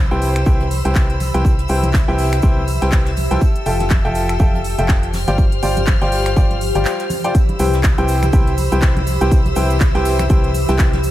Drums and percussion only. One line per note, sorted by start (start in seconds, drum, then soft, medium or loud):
0.11 closed hi-hat soft
0.22 open hi-hat medium
0.22 tambourine medium
0.22 shaker medium
0.36 finger snap medium
0.36 closed hi-hat medium
0.36 tambourine medium
0.46 kick loud
0.46 shaker medium
0.60 closed hi-hat soft
0.60 high conga medium
0.71 open hi-hat loud
0.71 tambourine medium
0.71 shaker medium
0.85 closed hi-hat medium
0.85 tambourine soft
0.95 kick loud
0.95 snare loud
0.95 clap loud
0.95 shaker medium
1.10 closed hi-hat soft
1.20 open hi-hat medium
1.20 tambourine medium
1.20 high conga medium
1.20 shaker medium
1.34 closed hi-hat medium
1.34 tambourine medium
1.45 kick loud
1.45 tambourine soft
1.45 shaker medium
1.59 closed hi-hat soft
1.68 open hi-hat loud
1.68 tambourine medium
1.68 shaker medium
1.83 closed hi-hat medium
1.83 tambourine medium
1.83 high conga medium
1.94 kick loud
1.94 snare loud
1.94 clap loud
1.94 tambourine soft
1.94 shaker medium
2.08 snare soft
2.18 open hi-hat medium
2.18 tambourine medium
2.32 finger snap medium
2.32 closed hi-hat medium
2.32 closed hi-hat soft
2.32 tambourine soft
2.42 kick loud
2.42 shaker medium
2.57 high conga medium
2.67 open hi-hat loud
2.67 tambourine medium
2.67 shaker medium
2.82 snare medium
2.82 closed hi-hat medium
2.82 tambourine soft
2.92 kick loud
2.92 snare loud
2.92 clap loud
2.92 shaker medium
3.05 snare soft
3.05 closed hi-hat medium
3.17 open hi-hat medium
3.17 tambourine medium
3.17 high conga medium
3.17 shaker medium
3.31 closed hi-hat medium
3.31 tambourine soft
3.41 kick loud
3.41 shaker medium
3.56 closed hi-hat medium
3.66 open hi-hat loud
3.66 tambourine medium
3.66 shaker medium
3.80 snare soft
3.80 closed hi-hat medium
3.80 tambourine medium
3.80 high conga loud
3.90 kick loud
3.90 snare loud
3.90 clap loud
3.90 tambourine soft
3.90 shaker medium
4.05 closed hi-hat soft
4.15 open hi-hat medium
4.15 tambourine medium
4.15 shaker medium
4.29 finger snap medium
4.29 closed hi-hat medium
4.29 tambourine soft
4.39 kick loud
4.39 tambourine soft
4.39 shaker medium
4.53 closed hi-hat soft
4.53 high conga medium
4.64 open hi-hat loud
4.64 tambourine medium
4.64 shaker medium
4.78 closed hi-hat medium
4.78 tambourine soft
4.88 kick loud
4.88 snare loud
4.88 clap loud
4.88 tambourine soft
4.88 shaker medium
5.03 closed hi-hat medium
5.13 snare loud
5.13 open hi-hat medium
5.13 tambourine medium
5.13 high conga medium
5.13 shaker medium
5.28 closed hi-hat medium
5.28 closed hi-hat soft
5.28 tambourine medium
5.38 kick loud
5.38 tambourine soft
5.38 shaker medium
5.52 closed hi-hat medium
5.63 open hi-hat loud
5.63 tambourine medium
5.63 shaker medium
5.77 closed hi-hat medium
5.77 closed hi-hat soft
5.77 tambourine medium
5.77 high conga loud
5.87 kick loud
5.87 snare loud
5.87 clap loud
5.87 tambourine soft
5.87 shaker medium
6.01 snare soft
6.01 closed hi-hat soft
6.12 open hi-hat medium
6.12 tambourine medium
6.26 finger snap medium
6.26 closed hi-hat soft
6.26 closed hi-hat medium
6.26 tambourine medium
6.36 kick loud
6.36 shaker medium
6.51 closed hi-hat soft
6.51 high conga medium
6.61 open hi-hat loud
6.61 tambourine medium
6.61 shaker medium
6.75 closed hi-hat medium
6.75 closed hi-hat soft
6.75 tambourine soft
6.85 snare loud
6.85 clap loud
6.85 tambourine soft
6.85 shaker medium
7.00 snare soft
7.00 closed hi-hat medium
7.10 open hi-hat medium
7.10 tambourine medium
7.10 high conga medium
7.10 shaker medium
7.24 closed hi-hat medium
7.24 tambourine soft
7.35 kick loud
7.35 closed hi-hat medium
7.35 tambourine soft
7.35 shaker soft
7.35 shaker medium
7.49 closed hi-hat soft
7.49 high conga loud
7.59 open hi-hat loud
7.59 tambourine medium
7.59 shaker medium
7.73 snare soft
7.73 closed hi-hat soft
7.73 tambourine medium
7.73 shaker soft
7.83 kick loud
7.83 snare loud
7.83 clap loud
7.83 closed hi-hat medium
7.83 tambourine soft
7.83 high conga medium
7.83 shaker medium
7.83 shaker soft
7.98 closed hi-hat soft
8.08 open hi-hat loud
8.08 tambourine medium
8.08 shaker medium
8.22 finger snap medium
8.22 closed hi-hat soft
8.22 tambourine medium
8.22 high conga medium
8.22 shaker soft
8.32 kick loud
8.32 closed hi-hat medium
8.32 tambourine soft
8.32 shaker medium
8.32 shaker soft
8.47 closed hi-hat soft
8.58 open hi-hat loud
8.58 tambourine medium
8.58 high conga medium
8.58 shaker medium
8.72 closed hi-hat soft
8.72 tambourine medium
8.72 shaker soft
8.82 kick loud
8.82 snare loud
8.82 clap loud
8.82 closed hi-hat medium
8.82 shaker medium
8.82 shaker soft
8.97 closed hi-hat soft
8.97 high conga loud
9.07 open hi-hat medium
9.07 tambourine medium
9.07 shaker medium
9.20 closed hi-hat soft
9.20 tambourine medium
9.20 shaker soft
9.31 kick loud
9.31 closed hi-hat medium
9.31 tambourine soft
9.31 shaker medium
9.31 shaker soft
9.45 closed hi-hat soft
9.45 high conga loud
9.55 open hi-hat loud
9.55 tambourine medium
9.55 shaker medium
9.70 closed hi-hat soft
9.70 tambourine medium
9.70 shaker soft
9.80 kick loud
9.80 snare loud
9.80 clap loud
9.80 closed hi-hat medium
9.80 tambourine soft
9.80 high conga medium
9.80 shaker soft
9.80 shaker medium
9.95 snare soft
9.95 closed hi-hat soft
10.05 open hi-hat loud
10.05 open hi-hat medium
10.05 tambourine medium
10.05 shaker medium
10.19 finger snap medium
10.19 closed hi-hat soft
10.19 tambourine medium
10.19 high conga loud
10.19 shaker soft
10.29 kick loud
10.29 closed hi-hat medium
10.29 tambourine soft
10.29 shaker medium
10.29 shaker soft
10.44 closed hi-hat soft
10.54 open hi-hat loud
10.54 tambourine medium
10.54 high conga medium
10.54 shaker medium
10.69 snare medium
10.69 closed hi-hat soft
10.69 tambourine medium
10.69 shaker soft
10.79 kick loud
10.79 snare loud
10.79 clap loud
10.79 closed hi-hat medium
10.79 tambourine soft
10.79 shaker soft
10.79 shaker medium
10.93 snare soft
10.93 closed hi-hat soft
10.93 high conga loud
11.03 open hi-hat loud
11.03 tambourine loud
11.03 shaker medium